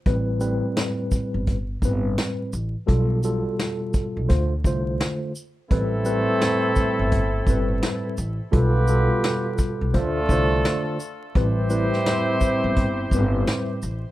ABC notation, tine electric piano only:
X:1
M:4/4
L:1/8
Q:"Swing 16ths" 1/4=85
K:Am
V:1 name="Tine electric piano"
[A,,G,CB] [A,,G,CB]3 z [A,,G,CB]2 z | [B,,G,FA] [B,,G,FA]3 [D,A,Fc] [D,A,Fc]2 z | [A,,G,CB] [A,,G,CB]3 z [A,,G,CB]2 z | [B,,G,FA] [B,,G,FA]3 [D,A,Fc] [D,A,Fc]2 z |
[A,,G,CB] [A,,G,CB]3 z [A,,G,CB]2 z |]